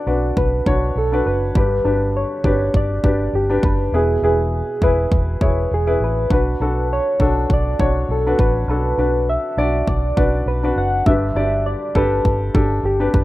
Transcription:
Already playing: D4 F#4 A4 B4 D5
0.07 B1 D4 F#4 B4
0.36 B1 B4, kick
0.66 B1 D4 F#4 C#5, kick
0.96 B1 A4
1.12 D4 F#4 B4
1.26 F#1 B4
1.55 G1 G2 D3 D4 G4 B4, kick
1.85 G1 D4 G4 B4
2.17 C#5
2.44 G1 D4 G4 B4, kick
2.74 G1 D5, kick
3.04 G1 D4 G4 B4, kick
3.33 G1 G4
3.50 D4 G4 B4
3.63 F#1 B4, kick
3.92 E1 B2 E4 G#4 B4
4.22 E1 E4 G#4 B4
4.81 E1 E4 G#4 B4, kick
5.11 E1, kick
5.41 E1 E4 G#4 C#5, kick
5.71 E1 G#4
5.87 E4 G#4 B4
6.00 A1 B4
6.30 B1 D4 F#4 B4, kick
6.60 B1 D4 F#4 A4
6.93 C#5
7.20 B1 D4 F#4 A4, kick
7.50 B1 D5, kick
7.79 B1 D4 F#4 C#5, kick
8.09 B1 A4
8.27 D4 F#4 B4
8.39 A1 B4, kick
8.68 B1 D4 F#4 A4 B4
8.98 B1 D4 F#4 B4
9.29 E5
9.57 B1 D4 F#4 D5
9.87 B1 D5, kick
10.17 B1 D4 F#4 B4, kick
10.46 B1 B4
10.63 D4 F#4 B4
10.76 F#1 F#5
11.06 G1 G2 D3 D4 G4 B4 E5, kick
11.35 G1 D4 G4 D5
11.66 D5
11.95 G1 D4 G4 A4 B4, kick
12.25 G1, kick
12.54 G1 D4 G4 A4, kick
12.83 G1 G4
13.00 D4 G4 B4
13.14 F#1 B4, kick

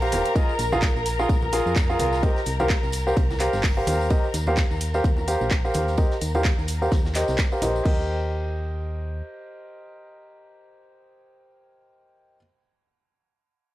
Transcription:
Already playing: A#1 A#4 A#5
0.02 G4 A#4 C5 F5, closed hi-hat, tambourine
0.12 D#1, open hi-hat, ride, tambourine, high conga
0.25 closed hi-hat, tambourine
0.36 F4 G#4 A#4 D#5, kick, ride, tambourine
0.49 tambourine
0.59 A#1, snare, open hi-hat, ride, tambourine
0.72 F4 G#4 A#4 F5, tambourine, high conga
0.82 kick, snare, clap, ride, tambourine
0.96 A#1, tambourine
1.06 open hi-hat, ride, tambourine
1.19 F4 G#4 A#4 F5, tambourine
1.29 A#1, kick, ride, tambourine
1.42 tambourine, high conga
1.53 F4 G#4 A#4 F5, open hi-hat, ride, tambourine
1.66 F2, tambourine
1.76 kick, snare, clap, ride, tambourine
1.90 F4 G#4 A#4 F5, tambourine
1.99 C2, open hi-hat, ride, tambourine, high conga
2.12 snare, tambourine
2.23 G4 A#4 C5 D#5, kick, ride, tambourine
2.36 snare, tambourine
2.46 C2, open hi-hat, ride, tambourine
2.60 G4 A#4 C5 F5, tambourine, high conga
2.70 kick, snare, clap, ride, tambourine
2.83 C2, tambourine
2.92 open hi-hat, ride, tambourine
3.07 G4 A#4 C5 F5, tambourine
3.17 C2, kick, ride, tambourine
3.30 snare, tambourine, high conga
3.40 G4 A#4 C5 F5, clap, open hi-hat, ride, tambourine
3.53 G1, snare, tambourine
3.63 kick, snare, clap, open hi-hat, tambourine
3.77 G4 A#4 C5 F5, tambourine
3.87 D#2, open hi-hat, ride, tambourine, high conga
4.01 tambourine
4.10 G4 A#4 C5 D#5, kick, ride, tambourine
4.24 tambourine
4.34 D#2, snare, open hi-hat, ride, tambourine
4.47 G4 A#4 C5 F5, tambourine, high conga
4.57 kick, snare, clap, ride, tambourine
4.71 D#2, tambourine
4.81 open hi-hat, ride, tambourine
4.94 G4 A#4 C5 F5, tambourine
5.04 D#2, kick, ride, tambourine
5.17 tambourine, high conga
5.28 G4 A#4 C5 F5, open hi-hat, ride, tambourine
5.41 A#1, tambourine
5.51 kick, snare, clap, ride, tambourine
5.65 G4 A#4 C5 F5, tambourine
5.74 D#2, open hi-hat, ride, tambourine, high conga
5.88 snare, tambourine
5.97 G4 A#4 C5 D#5, kick, ride, tambourine
6.11 snare, tambourine
6.21 D#2, open hi-hat, ride, tambourine
6.35 G4 A#4 C5 F5, tambourine, high conga
6.45 kick, snare, clap, ride, tambourine
6.58 D#2, tambourine
6.68 open hi-hat, ride, tambourine
6.82 G4 A#4 C5 F5, tambourine
6.91 D#2, kick, snare, ride, tambourine
7.05 snare, tambourine, high conga
7.15 G4 A#4 C5 D#5, snare, clap, open hi-hat, ride, tambourine
7.28 C2, snare, tambourine
7.38 kick, snare, clap, ride, tambourine
7.52 G4 A#4 C5 F5, tambourine
7.62 A#1 G4 A#4 C5 D#5, open hi-hat, ride, tambourine, high conga
7.76 tambourine
7.85 D#2 G4 A#4 C5 D#5, kick, crash

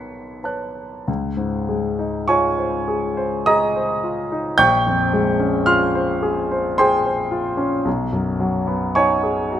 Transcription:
Already playing: D#3 B4 C#5 A5 F#6 B6 C#7
0.43 B4 C#5 A5 F#6
1.08 C#2
1.37 G#2
1.69 G#3
1.99 D#4
2.28 F4 C#5 G#5 C#6
2.58 C5
2.88 G#4
3.17 C5
3.46 G#4 D#5 A#5 D#6
3.76 C5
4.04 F4
4.32 D#4
4.58 A#1 G5 C#6 G6
4.87 F2
5.13 G#3
5.39 C#4
5.66 F4 F5 C6 F6
5.95 C5
6.23 G#4
6.52 C5
6.78 G#4 C5 G5 C6
7.06 C5
7.31 F4
7.57 C#4
7.85 B1
8.13 F#2
8.40 F#3
8.67 B3
8.95 D#4 C#5 G#5 C#6
9.23 G#4
9.52 F#4

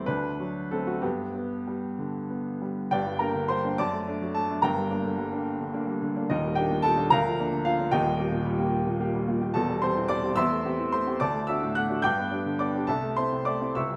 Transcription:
0.06 D2 D4 B4
0.39 F#3
0.71 A3 C4 A4
0.87 A3 F#4
1.02 G2 B3 G4
1.35 B3
1.67 G3
1.99 D3
2.30 B3
2.62 G3
2.91 G1 G2 G4 D5 G5
3.07 G3
3.19 A#3 D4 A#4 A#5
3.35 D3
3.48 G3 C5 C6
3.65 A#3 D4
3.78 F#2 D5 A5 D6
3.93 A3
4.07 A3 D4
4.22 F#3
4.34 A3 A4 A5
4.51 A3 D4
4.62 G1 G2 A#4 G5 A#5
4.77 G3
4.90 A#3 D4
5.05 D3
5.18 G3
5.32 A#3 D4
5.60 D3
5.74 A#3 D4
5.87 G3
6.02 D3
6.16 A#3 D4
6.30 D#1 D#2 D#4 A#4 D#5
6.44 G3
6.55 A#3 D4 G4 G5
6.71 A#2
6.82 G3 A4 A5
6.98 A#3 D4
7.10 D2 A#4 F5 A#5
7.26 F3
7.39 A#3 D4
7.53 D3
7.65 F3 F4 F5
7.79 A#3 D4
7.91 D#1 D#2 G4 D#5 G5
8.05 G3
8.19 A#3 G4
8.32 A#2
8.45 G3
8.59 A#3 G4
8.87 A#2
9.00 A#3 G4
9.15 G3
9.28 A#2
9.42 A#3 G4
9.54 E1 E2 A4 A5
9.69 G3
9.82 C4 G4 C5 C6
9.96 E3
10.09 G3 D5 D6
10.23 C4 G4
10.36 E2 E5 C6 E6
10.51 A3
10.65 C4 G4
10.79 E3
10.92 A3 C5 C6
11.07 C4 G4
11.20 D2 D5 A5 D6
11.34 A3
11.47 D4 F#4 E5 E6
11.62 A2
11.75 A3 F#5 F#6
11.90 D4 F#4
12.02 G2 G5 D6 G6
12.18 B3
12.31 D4 G4
12.46 D3
12.59 B3 D5 D6
12.75 D4 G4
12.87 C2 A4 E5 A5
13.03 A3
13.17 C4 E4 C5 C6
13.32 C3
13.45 A3 D5 D6
13.61 C4 E4
13.75 C#2 E5 C#6 E6
13.91 G3

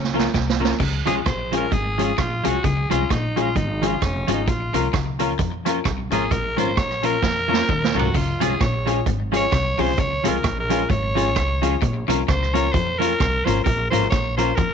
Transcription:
Already playing: C#2 C#4
0.04 snare
0.14 F3 A#3 C#4 F4 A#4
0.19 snare
0.34 C2 C3, kick, snare
0.50 snare
0.60 F3 A#3 C#4 F4 A#4
0.65 snare
0.80 C#2 C#3, kick, crash
1.06 C2 C3 F3 G#3 C#4 F4 G#4, closed hi-hat
1.25 A#1 A#2 C5, kick, cross-stick, closed hi-hat
1.52 F3 G#3 C#4 F4 G#4, closed hi-hat
1.57 A#4
1.71 G#1 G#2 G#4, kick, closed hi-hat
1.98 F3 G#3 C#4 F4 G#4, closed hi-hat
2.04 G#4
2.18 A#1 A#2 F4, kick, cross-stick, closed hi-hat
2.43 C2 C3 F3 G#3 C#4 F4 G#4, closed hi-hat
2.49 F#4
2.64 C#2 C#3 G#4, kick, closed hi-hat
2.90 C2 C3 F3 G#3 C#4 F4 G#4, closed hi-hat
3.10 A#1 A#2 D#4, kick, cross-stick, closed hi-hat
3.36 F3 G#3 C#4 F4 G#4, closed hi-hat
3.41 F4
3.55 G#1 G#2 D#4, kick, closed hi-hat
3.82 F3 G#3 C#4 F4 G#4, closed hi-hat
3.87 F4
4.02 F1 F2 C#4, kick, cross-stick, closed hi-hat
4.27 G#1 G#2 F3 G#3 C#4 F4 G#4, closed hi-hat
4.33 D#4
4.47 A#1 A#2 F4, kick, closed hi-hat
4.74 C2 C3 F3 A#3 C#4 F4 A#4, closed hi-hat
4.93 C#2 C#3, kick, cross-stick, closed hi-hat
5.19 F3 A#3 C#4 F4 A#4, closed hi-hat
5.39 F2 F3, kick, closed hi-hat
5.65 F3 A#3 C#4 F4 A#4, cross-stick, closed hi-hat
5.85 C2 C3, kick, cross-stick, closed hi-hat
6.10 G#1 G#2 F3 A#3 C#4 F4 G#4 A#4, closed hi-hat
6.31 A#1 A#2 A#4, kick, closed hi-hat
6.56 G#1 G#2 F3 A#3 C#4 F4 A#4 C5, closed hi-hat
6.77 A#1 A#2 C#5, kick, cross-stick, closed hi-hat
6.91 cross-stick
7.03 F3 A#3 C#4 F4 A#4, closed hi-hat
7.22 F2 F3, kick, snare
7.48 F3 A#3 C#4 F4 A#4
7.53 snare
7.69 D#2 D#3, kick, mid tom
7.84 snare
7.94 C2 C3 F3 A#3 C#4 F4 F#4 A#4
7.99 floor tom
8.14 C#2 C#3 F4, kick, splash
8.40 C2 C3 F3 G#3 C#4 F4 G#4, closed hi-hat
8.61 A#1 A#2 C#5, kick, cross-stick, closed hi-hat
8.86 F3 G#3 C#4 F4 G#4, closed hi-hat
9.06 G#1 G#2, kick, closed hi-hat
9.32 F3 G#3 C#4 F4 G#4, closed hi-hat
9.36 C#5
9.52 C2 C3, kick, cross-stick, closed hi-hat
9.78 C2 C3 F3 G#3 C#4 F4 G#4 C5, open hi-hat
9.98 C#2 C#3 C#5, kick, closed hi-hat
10.23 C2 C3 F3 G#3 C#4 F4 G#4 A4, closed hi-hat
10.28 A#4
10.44 A#1 A#2, kick, cross-stick, closed hi-hat
10.60 A#4
10.69 F3 G#3 C#4 F4 G#4, closed hi-hat
10.90 G#1 G#2 C#5, kick, closed hi-hat
11.15 F3 G#3 C#4 F4 G#4, closed hi-hat
11.36 C#2 C#3, kick, cross-stick, closed hi-hat
11.62 F3 G#3 C#4 F4 G#4, closed hi-hat
11.82 A#1 A#2, kick, closed hi-hat
12.08 C2 C3 F3 A#3 C#4 F4 A#4, closed hi-hat
12.28 C#2 C#3 C5, kick, cross-stick, closed hi-hat
12.42 cross-stick
12.54 F3 A#3 C#4 F4 A#4 C#5, closed hi-hat
12.73 F2 F3 C5, kick, closed hi-hat
12.99 F3 A#3 C#4 F4 A#4, closed hi-hat
13.20 C2 C3, kick, cross-stick, closed hi-hat
13.45 G#1 G#2 F3 A#3 C#4 F4 A#4 C5, closed hi-hat
13.64 A#1 A#2 A#4, kick, closed hi-hat
13.90 G#1 G#2 F3 A#3 C#4 F4 A#4 C5, closed hi-hat
14.10 A#1 A#2 C#5, kick, cross-stick, closed hi-hat
14.37 F3 A#3 C#4 F4 A#4 C5, closed hi-hat
14.56 F2 F3 A#4, kick, closed hi-hat

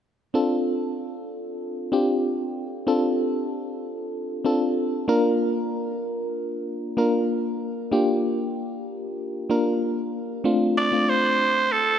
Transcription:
0.34 C4 D4 F4 A4
1.92 C4 D4 F4 G4
2.87 C4 D4 F4 A4
4.45 C4 D4 F4 A4
5.08 A#3 D4 F4 A#4
6.97 A#3 D4 F4 A#4
7.92 A#3 D4 F4 G4
9.50 A#3 D4 F4 A#4
10.44 A3 C4 D4 F4
10.78 D5
10.92 A3 C4 D4 F4
11.09 C5
11.72 A4

